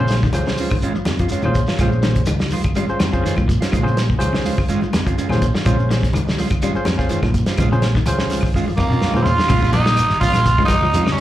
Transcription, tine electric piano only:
0.00 0.14 C#4 medium
0.00 0.15 F4 medium
0.00 0.15 G#4 medium
0.00 0.15 C5 loud
0.34 0.76 C#4 medium
0.34 0.76 F4 medium
0.34 0.76 G#4 medium
0.34 0.76 C5 medium
1.32 1.77 C#5 medium
1.45 1.60 C#4 medium
1.45 1.60 F4 medium
1.45 1.60 G#4 medium
1.45 1.60 C5 medium
1.80 2.22 C#4 medium
1.80 2.22 F4 medium
1.80 2.22 G#4 medium
1.80 2.23 C5 medium
2.89 2.99 C#4 medium
2.89 2.99 F4 medium
2.89 2.99 G#4 medium
2.89 2.99 C5 medium
3.13 3.33 C#4 medium
3.13 3.33 F4 medium
3.13 3.34 G#4 medium
3.13 3.34 C5 medium
3.62 3.67 G#4 medium
3.62 3.67 C5 loud
3.72 3.78 G#4 medium
3.72 3.79 C5 loud
3.83 3.99 C#4 medium
3.83 3.99 F4 medium
3.83 3.99 G#4 medium
3.83 4.00 C5 medium
4.18 4.62 C#4 medium
4.18 4.61 F4 medium
4.18 4.61 G#4 medium
4.18 4.61 C5 medium
5.30 5.45 C#4 medium
5.30 5.45 F4 medium
5.30 5.45 G#4 medium
5.30 5.46 C5 medium
5.65 6.07 C#4 medium
5.65 6.07 F4 medium
5.65 6.07 G#4 medium
5.65 6.07 C5 medium
6.75 6.85 C#4 medium
6.75 6.85 F4 medium
6.75 6.85 G#4 medium
6.75 6.85 C5 medium
6.98 7.19 C#4 medium
6.98 7.19 F4 medium
6.98 7.19 G#4 medium
6.98 7.19 C5 medium
7.46 7.52 G#4 medium
7.46 7.52 C5 loud
7.59 7.64 G#4 medium
7.59 7.65 C5 medium
7.72 7.87 C#4 medium
7.72 7.87 F4 medium
7.72 7.86 G#4 medium
7.72 7.87 C5 medium
8.07 8.48 C#4 medium
8.07 8.48 F4 medium
8.07 8.48 G#4 medium
8.07 8.49 C5 medium
9.16 9.31 C#4 medium
9.16 9.31 F4 medium
9.16 9.31 G#4 medium
9.16 9.31 C5 medium

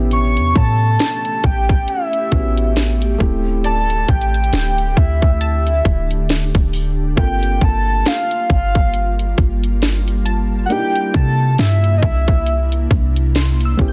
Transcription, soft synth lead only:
0.13 0.59 C#6 loud
0.57 1.47 A5 loud
1.45 1.91 G5 loud
1.89 3.21 E5 loud
3.66 4.11 A5 loud
4.10 4.99 G5 loud
4.98 6.74 E5 loud
7.18 7.65 G5 loud
7.64 8.09 A5 loud
8.08 8.51 F5 loud
8.52 9.35 F5 loud
10.66 10.74 F#5 medium
10.72 11.15 G5 loud
11.16 11.56 A5 loud
11.60 11.95 E5 loud
11.98 12.05 D#5 medium
12.04 12.91 E5 medium

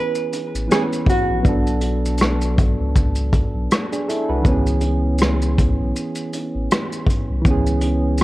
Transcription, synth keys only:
0.00 0.64 E3 medium
0.00 0.66 B3 medium
0.00 0.67 C#4 soft
0.00 0.69 G#4 medium
0.67 1.44 E3 soft
0.67 1.41 B3 soft
0.67 1.45 C#4 soft
0.72 1.46 B4 medium
1.40 3.63 F#3 medium
1.40 3.65 B3 medium
1.45 3.66 D4 medium
1.45 3.68 A4 medium
3.92 4.07 D4 soft
3.92 4.07 G#4 medium
4.08 4.29 E4 medium
4.08 4.29 A4 medium
4.29 4.65 F#4 medium
4.29 4.65 B4 medium
4.42 7.40 E3 medium
4.42 7.41 B3 medium
4.48 7.43 C#4 medium
4.48 7.44 G#4 medium
7.42 8.24 E3 medium
7.42 8.24 B3 medium
7.48 8.24 C#4 medium
7.48 8.24 G#4 medium

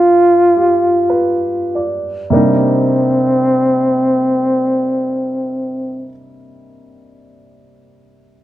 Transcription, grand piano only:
0.00 2.33 G2 soft
0.00 2.30 G3 soft
0.00 2.34 B3 soft
0.00 2.32 D4 soft
0.00 2.36 F4 soft
0.56 1.39 G4 soft
1.10 2.08 B4 soft
1.75 2.65 D5 soft
2.30 6.06 C3 medium
2.30 6.08 G3 soft
2.30 6.09 A#3 soft
2.30 6.09 D4 soft
2.30 6.10 D#4 medium

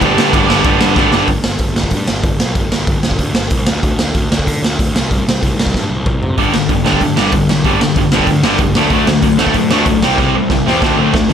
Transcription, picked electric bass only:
0.01 0.15 G1 loud
0.17 0.31 G2 medium
0.33 0.47 G1 loud
0.49 0.63 G1 medium
0.64 0.78 G1 loud
0.81 0.95 G2 medium
0.97 1.10 G1 loud
1.11 1.26 G1 medium
1.27 1.43 G1 medium
1.44 1.58 G1 medium
1.59 1.74 G1 medium
1.75 1.91 G1 medium
1.91 2.07 G2 medium
2.08 2.23 G1 medium
2.23 2.39 G1 loud
2.40 2.55 B1 medium
2.55 2.71 G1 medium
2.72 2.86 G1 medium
2.87 3.03 G1 medium
3.04 3.17 G1 medium
3.18 3.34 D2 medium
3.35 3.50 G1 medium
3.50 3.66 C2 loud
3.68 3.82 D2 medium
3.83 3.98 D2 medium
4.00 4.14 D2 medium
4.14 4.30 D2 medium
4.30 4.46 D2 medium
4.46 4.62 D3 medium
4.63 4.78 D2 medium
4.79 4.94 D2 loud
4.95 5.10 C2 medium
5.11 5.26 C2 medium
5.27 5.42 C2 medium
5.43 5.56 C2 medium
5.57 5.73 C2 medium
5.74 5.89 G2 medium
5.90 6.05 C2 medium
6.06 6.21 C2 loud
6.21 6.37 C3 medium
6.38 6.53 G1 medium
6.54 6.68 G1 medium
6.69 6.85 G1 medium
6.86 7.00 G1 medium
7.00 7.16 G2 medium
7.18 7.32 G1 medium
7.32 7.48 G1 loud
7.50 7.64 B1 medium
7.65 7.80 G1 medium
7.82 7.95 G1 medium
7.96 8.11 G1 loud
8.11 8.26 G1 medium
8.27 8.42 D2 medium
8.43 8.58 G1 medium
8.59 8.74 G1 loud
8.75 8.89 D2 medium
8.90 9.06 D2 medium
9.07 9.22 D2 medium
9.23 9.38 D2 loud
9.38 9.54 D2 medium
9.55 9.69 D3 loud
9.70 9.85 D2 medium
9.86 10.02 D2 loud
10.02 10.17 C2 medium
10.18 10.34 C2 medium
10.35 10.49 C2 medium
10.50 10.65 C2 medium
10.66 10.81 E2 medium
10.82 10.97 D2 medium
10.97 11.13 D2 medium
11.13 11.29 D2 loud
11.29 11.33 D3 medium

